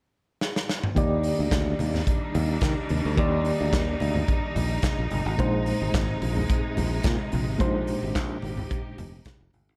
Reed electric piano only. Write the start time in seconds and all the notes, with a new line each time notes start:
0.95 D#3 A#3 G4 D5
3.16 D#3 A#3 G4 D5
5.37 A#2 G#3 D4 C5
5.46 D#4
7.58 A#2 G#3 D4 C5
7.67 D#4